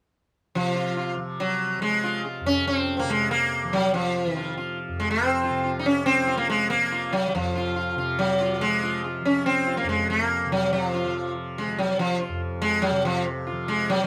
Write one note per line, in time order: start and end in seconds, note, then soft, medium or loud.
0.55 3.02 C3 medium
0.55 1.14 F3 medium
0.75 0.95 F4 soft
0.97 1.16 F4 soft
1.17 1.78 F3 soft
1.40 1.81 F#3 medium
1.78 3.64 F3 medium
1.78 2.21 G#3 medium
2.04 2.23 F4 soft
2.25 2.44 F4 soft
2.41 4.88 F2 medium
2.46 2.67 C#4 medium
2.67 2.96 C4 medium
2.97 3.10 A#3 medium
2.97 2.99 C4 medium
3.03 5.49 C3 medium
3.10 3.31 G#3 medium
3.31 3.74 A#3 medium
3.64 4.26 F3 medium
3.73 3.93 F#3 medium
3.94 4.34 F3 medium
4.26 6.11 F3 medium
4.34 4.54 D#3 medium
4.34 4.56 F4 soft
4.57 4.77 F4 soft
4.88 7.34 F2 medium
5.00 5.10 G#3 medium
5.11 5.70 C4 medium
5.44 5.63 F4 soft
5.49 7.95 C3 medium
5.64 5.79 F4 soft
5.79 5.85 D#4 medium
5.86 6.05 C#4 medium
6.06 6.37 C4 loud
6.11 6.74 F3 medium
6.27 6.47 F4 soft
6.37 6.49 A#3 medium
6.50 6.69 G#3 medium
6.70 8.59 F3 medium
6.70 7.14 A#3 medium
6.92 7.11 F4 soft
7.13 7.27 F#3 medium
7.28 7.34 F#3 medium
7.34 9.83 F2 medium
7.34 7.94 F3 medium
7.55 7.75 F4 soft
7.76 7.96 F4 soft
7.96 10.44 C3 medium
7.96 8.17 F4 soft
8.19 8.62 F#3 medium
8.41 8.60 F4 soft
8.59 9.21 F3 medium
8.59 9.01 G#3 medium
8.83 9.02 F4 soft
9.04 9.23 F4 soft
9.21 11.06 F3 soft
9.25 9.46 C#4 medium
9.46 9.77 C4 medium
9.67 9.86 F4 soft
9.77 9.88 A#3 medium
9.83 12.28 F2 medium
9.89 10.09 G#3 medium
10.10 10.49 A#3 medium
10.45 12.90 C3 medium
10.52 10.72 F#3 medium
10.73 10.84 F#3 medium
10.84 11.32 F3 medium
10.94 11.14 F4 soft
11.06 11.67 F3 medium
11.58 11.77 G#3 medium
11.67 13.52 F3 medium
11.79 11.99 F#3 medium
11.99 12.19 F3 medium
12.20 12.40 F4 soft
12.29 14.07 F2 medium
12.62 12.84 G#3 loud
12.82 13.05 F#3 medium
12.91 14.07 C3 medium
13.05 13.25 F3 medium
13.47 13.67 F4 soft
13.52 14.07 F3 medium
13.68 13.90 G#3 medium
13.90 14.02 F#3 medium
14.03 14.07 F#3 medium